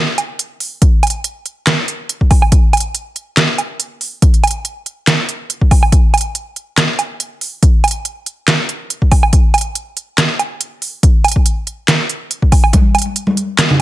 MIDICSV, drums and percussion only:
0, 0, Header, 1, 2, 480
1, 0, Start_track
1, 0, Tempo, 425532
1, 923, Time_signature, 4, 2, 24, 8
1, 15584, End_track
2, 0, Start_track
2, 0, Title_t, "Drums"
2, 203, Note_on_c, 9, 42, 58
2, 203, Note_on_c, 9, 77, 52
2, 315, Note_off_c, 9, 42, 0
2, 315, Note_off_c, 9, 77, 0
2, 442, Note_on_c, 9, 42, 88
2, 555, Note_off_c, 9, 42, 0
2, 681, Note_on_c, 9, 46, 93
2, 794, Note_off_c, 9, 46, 0
2, 922, Note_on_c, 9, 36, 121
2, 922, Note_on_c, 9, 42, 84
2, 1035, Note_off_c, 9, 36, 0
2, 1035, Note_off_c, 9, 42, 0
2, 1161, Note_on_c, 9, 42, 50
2, 1161, Note_on_c, 9, 77, 72
2, 1205, Note_off_c, 9, 42, 0
2, 1205, Note_on_c, 9, 42, 64
2, 1242, Note_off_c, 9, 42, 0
2, 1242, Note_on_c, 9, 42, 76
2, 1274, Note_off_c, 9, 77, 0
2, 1355, Note_off_c, 9, 42, 0
2, 1402, Note_on_c, 9, 42, 82
2, 1514, Note_off_c, 9, 42, 0
2, 1642, Note_on_c, 9, 42, 53
2, 1755, Note_off_c, 9, 42, 0
2, 1882, Note_on_c, 9, 38, 125
2, 1882, Note_on_c, 9, 39, 92
2, 1882, Note_on_c, 9, 42, 78
2, 1995, Note_off_c, 9, 38, 0
2, 1995, Note_off_c, 9, 39, 0
2, 1995, Note_off_c, 9, 42, 0
2, 2122, Note_on_c, 9, 42, 54
2, 2234, Note_off_c, 9, 42, 0
2, 2362, Note_on_c, 9, 42, 84
2, 2474, Note_off_c, 9, 42, 0
2, 2493, Note_on_c, 9, 36, 59
2, 2602, Note_on_c, 9, 46, 85
2, 2602, Note_on_c, 9, 77, 50
2, 2603, Note_off_c, 9, 36, 0
2, 2603, Note_on_c, 9, 36, 111
2, 2714, Note_off_c, 9, 46, 0
2, 2714, Note_off_c, 9, 77, 0
2, 2715, Note_off_c, 9, 36, 0
2, 2732, Note_on_c, 9, 77, 76
2, 2842, Note_on_c, 9, 42, 81
2, 2843, Note_on_c, 9, 36, 126
2, 2844, Note_off_c, 9, 77, 0
2, 2954, Note_off_c, 9, 42, 0
2, 2955, Note_off_c, 9, 36, 0
2, 3082, Note_on_c, 9, 42, 47
2, 3082, Note_on_c, 9, 77, 77
2, 3126, Note_off_c, 9, 42, 0
2, 3126, Note_on_c, 9, 42, 62
2, 3163, Note_off_c, 9, 42, 0
2, 3163, Note_on_c, 9, 42, 78
2, 3195, Note_off_c, 9, 77, 0
2, 3276, Note_off_c, 9, 42, 0
2, 3322, Note_on_c, 9, 42, 76
2, 3435, Note_off_c, 9, 42, 0
2, 3563, Note_on_c, 9, 42, 51
2, 3675, Note_off_c, 9, 42, 0
2, 3802, Note_on_c, 9, 38, 127
2, 3802, Note_on_c, 9, 39, 87
2, 3802, Note_on_c, 9, 42, 73
2, 3915, Note_off_c, 9, 38, 0
2, 3915, Note_off_c, 9, 39, 0
2, 3915, Note_off_c, 9, 42, 0
2, 4043, Note_on_c, 9, 42, 51
2, 4043, Note_on_c, 9, 77, 51
2, 4155, Note_off_c, 9, 42, 0
2, 4155, Note_off_c, 9, 77, 0
2, 4282, Note_on_c, 9, 42, 81
2, 4395, Note_off_c, 9, 42, 0
2, 4522, Note_on_c, 9, 46, 89
2, 4635, Note_off_c, 9, 46, 0
2, 4763, Note_on_c, 9, 36, 124
2, 4763, Note_on_c, 9, 42, 80
2, 4875, Note_off_c, 9, 42, 0
2, 4876, Note_off_c, 9, 36, 0
2, 4893, Note_on_c, 9, 42, 37
2, 5003, Note_off_c, 9, 42, 0
2, 5003, Note_on_c, 9, 42, 45
2, 5003, Note_on_c, 9, 77, 80
2, 5046, Note_off_c, 9, 42, 0
2, 5046, Note_on_c, 9, 42, 61
2, 5083, Note_off_c, 9, 42, 0
2, 5083, Note_on_c, 9, 42, 74
2, 5116, Note_off_c, 9, 77, 0
2, 5196, Note_off_c, 9, 42, 0
2, 5243, Note_on_c, 9, 42, 73
2, 5356, Note_off_c, 9, 42, 0
2, 5483, Note_on_c, 9, 42, 51
2, 5596, Note_off_c, 9, 42, 0
2, 5722, Note_on_c, 9, 38, 123
2, 5722, Note_on_c, 9, 39, 85
2, 5722, Note_on_c, 9, 42, 72
2, 5835, Note_off_c, 9, 38, 0
2, 5835, Note_off_c, 9, 39, 0
2, 5835, Note_off_c, 9, 42, 0
2, 5963, Note_on_c, 9, 42, 49
2, 6076, Note_off_c, 9, 42, 0
2, 6202, Note_on_c, 9, 42, 81
2, 6315, Note_off_c, 9, 42, 0
2, 6333, Note_on_c, 9, 36, 59
2, 6443, Note_off_c, 9, 36, 0
2, 6443, Note_on_c, 9, 36, 108
2, 6443, Note_on_c, 9, 46, 94
2, 6443, Note_on_c, 9, 77, 54
2, 6555, Note_off_c, 9, 36, 0
2, 6556, Note_off_c, 9, 46, 0
2, 6556, Note_off_c, 9, 77, 0
2, 6572, Note_on_c, 9, 77, 78
2, 6682, Note_on_c, 9, 36, 125
2, 6682, Note_on_c, 9, 42, 79
2, 6685, Note_off_c, 9, 77, 0
2, 6795, Note_off_c, 9, 36, 0
2, 6795, Note_off_c, 9, 42, 0
2, 6923, Note_on_c, 9, 42, 46
2, 6923, Note_on_c, 9, 77, 81
2, 6966, Note_off_c, 9, 42, 0
2, 6966, Note_on_c, 9, 42, 59
2, 7002, Note_off_c, 9, 42, 0
2, 7002, Note_on_c, 9, 42, 79
2, 7036, Note_off_c, 9, 77, 0
2, 7115, Note_off_c, 9, 42, 0
2, 7163, Note_on_c, 9, 42, 74
2, 7275, Note_off_c, 9, 42, 0
2, 7402, Note_on_c, 9, 42, 48
2, 7515, Note_off_c, 9, 42, 0
2, 7642, Note_on_c, 9, 38, 114
2, 7642, Note_on_c, 9, 39, 85
2, 7642, Note_on_c, 9, 42, 75
2, 7755, Note_off_c, 9, 38, 0
2, 7755, Note_off_c, 9, 39, 0
2, 7755, Note_off_c, 9, 42, 0
2, 7882, Note_on_c, 9, 42, 53
2, 7882, Note_on_c, 9, 77, 55
2, 7995, Note_off_c, 9, 42, 0
2, 7995, Note_off_c, 9, 77, 0
2, 8122, Note_on_c, 9, 42, 80
2, 8234, Note_off_c, 9, 42, 0
2, 8362, Note_on_c, 9, 46, 97
2, 8475, Note_off_c, 9, 46, 0
2, 8602, Note_on_c, 9, 36, 117
2, 8602, Note_on_c, 9, 42, 80
2, 8715, Note_off_c, 9, 36, 0
2, 8715, Note_off_c, 9, 42, 0
2, 8842, Note_on_c, 9, 42, 49
2, 8842, Note_on_c, 9, 77, 80
2, 8885, Note_off_c, 9, 42, 0
2, 8885, Note_on_c, 9, 42, 64
2, 8922, Note_off_c, 9, 42, 0
2, 8922, Note_on_c, 9, 42, 77
2, 8955, Note_off_c, 9, 77, 0
2, 9035, Note_off_c, 9, 42, 0
2, 9082, Note_on_c, 9, 42, 81
2, 9194, Note_off_c, 9, 42, 0
2, 9322, Note_on_c, 9, 42, 52
2, 9434, Note_off_c, 9, 42, 0
2, 9563, Note_on_c, 9, 38, 116
2, 9563, Note_on_c, 9, 39, 86
2, 9563, Note_on_c, 9, 42, 76
2, 9675, Note_off_c, 9, 38, 0
2, 9675, Note_off_c, 9, 39, 0
2, 9675, Note_off_c, 9, 42, 0
2, 9802, Note_on_c, 9, 42, 53
2, 9915, Note_off_c, 9, 42, 0
2, 10042, Note_on_c, 9, 42, 82
2, 10155, Note_off_c, 9, 42, 0
2, 10173, Note_on_c, 9, 36, 57
2, 10282, Note_on_c, 9, 46, 96
2, 10282, Note_on_c, 9, 77, 53
2, 10283, Note_off_c, 9, 36, 0
2, 10283, Note_on_c, 9, 36, 100
2, 10395, Note_off_c, 9, 36, 0
2, 10395, Note_off_c, 9, 46, 0
2, 10395, Note_off_c, 9, 77, 0
2, 10412, Note_on_c, 9, 77, 88
2, 10522, Note_on_c, 9, 42, 86
2, 10523, Note_on_c, 9, 36, 114
2, 10525, Note_off_c, 9, 77, 0
2, 10635, Note_off_c, 9, 36, 0
2, 10635, Note_off_c, 9, 42, 0
2, 10761, Note_on_c, 9, 42, 51
2, 10761, Note_on_c, 9, 77, 79
2, 10805, Note_off_c, 9, 42, 0
2, 10805, Note_on_c, 9, 42, 68
2, 10841, Note_off_c, 9, 42, 0
2, 10841, Note_on_c, 9, 42, 82
2, 10874, Note_off_c, 9, 77, 0
2, 10954, Note_off_c, 9, 42, 0
2, 11003, Note_on_c, 9, 42, 82
2, 11115, Note_off_c, 9, 42, 0
2, 11243, Note_on_c, 9, 42, 55
2, 11356, Note_off_c, 9, 42, 0
2, 11483, Note_on_c, 9, 38, 115
2, 11483, Note_on_c, 9, 39, 86
2, 11483, Note_on_c, 9, 42, 81
2, 11596, Note_off_c, 9, 38, 0
2, 11596, Note_off_c, 9, 39, 0
2, 11596, Note_off_c, 9, 42, 0
2, 11725, Note_on_c, 9, 42, 55
2, 11725, Note_on_c, 9, 77, 55
2, 11837, Note_off_c, 9, 42, 0
2, 11837, Note_off_c, 9, 77, 0
2, 11964, Note_on_c, 9, 42, 89
2, 12077, Note_off_c, 9, 42, 0
2, 12204, Note_on_c, 9, 46, 99
2, 12317, Note_off_c, 9, 46, 0
2, 12443, Note_on_c, 9, 36, 116
2, 12444, Note_on_c, 9, 42, 87
2, 12556, Note_off_c, 9, 36, 0
2, 12557, Note_off_c, 9, 42, 0
2, 12684, Note_on_c, 9, 42, 50
2, 12684, Note_on_c, 9, 77, 76
2, 12727, Note_off_c, 9, 42, 0
2, 12727, Note_on_c, 9, 42, 69
2, 12764, Note_off_c, 9, 42, 0
2, 12764, Note_on_c, 9, 42, 84
2, 12796, Note_off_c, 9, 77, 0
2, 12814, Note_on_c, 9, 36, 60
2, 12876, Note_off_c, 9, 42, 0
2, 12923, Note_on_c, 9, 42, 83
2, 12926, Note_off_c, 9, 36, 0
2, 13036, Note_off_c, 9, 42, 0
2, 13163, Note_on_c, 9, 42, 55
2, 13276, Note_off_c, 9, 42, 0
2, 13403, Note_on_c, 9, 38, 114
2, 13403, Note_on_c, 9, 39, 89
2, 13403, Note_on_c, 9, 42, 83
2, 13516, Note_off_c, 9, 38, 0
2, 13516, Note_off_c, 9, 39, 0
2, 13516, Note_off_c, 9, 42, 0
2, 13642, Note_on_c, 9, 42, 60
2, 13755, Note_off_c, 9, 42, 0
2, 13883, Note_on_c, 9, 42, 86
2, 13996, Note_off_c, 9, 42, 0
2, 14014, Note_on_c, 9, 36, 58
2, 14123, Note_on_c, 9, 46, 97
2, 14123, Note_on_c, 9, 77, 53
2, 14124, Note_off_c, 9, 36, 0
2, 14124, Note_on_c, 9, 36, 104
2, 14236, Note_off_c, 9, 46, 0
2, 14236, Note_off_c, 9, 77, 0
2, 14237, Note_off_c, 9, 36, 0
2, 14254, Note_on_c, 9, 77, 76
2, 14360, Note_on_c, 9, 63, 93
2, 14363, Note_on_c, 9, 42, 83
2, 14364, Note_on_c, 9, 36, 117
2, 14367, Note_off_c, 9, 77, 0
2, 14473, Note_off_c, 9, 63, 0
2, 14476, Note_off_c, 9, 42, 0
2, 14477, Note_off_c, 9, 36, 0
2, 14604, Note_on_c, 9, 42, 51
2, 14604, Note_on_c, 9, 77, 73
2, 14647, Note_off_c, 9, 42, 0
2, 14647, Note_on_c, 9, 42, 66
2, 14683, Note_off_c, 9, 42, 0
2, 14683, Note_on_c, 9, 42, 82
2, 14716, Note_off_c, 9, 77, 0
2, 14795, Note_off_c, 9, 42, 0
2, 14843, Note_on_c, 9, 42, 84
2, 14956, Note_off_c, 9, 42, 0
2, 14967, Note_on_c, 9, 63, 76
2, 15080, Note_off_c, 9, 63, 0
2, 15084, Note_on_c, 9, 42, 57
2, 15196, Note_off_c, 9, 42, 0
2, 15323, Note_on_c, 9, 38, 120
2, 15323, Note_on_c, 9, 39, 93
2, 15323, Note_on_c, 9, 42, 80
2, 15436, Note_off_c, 9, 38, 0
2, 15436, Note_off_c, 9, 39, 0
2, 15436, Note_off_c, 9, 42, 0
2, 15459, Note_on_c, 9, 64, 94
2, 15572, Note_off_c, 9, 64, 0
2, 15584, End_track
0, 0, End_of_file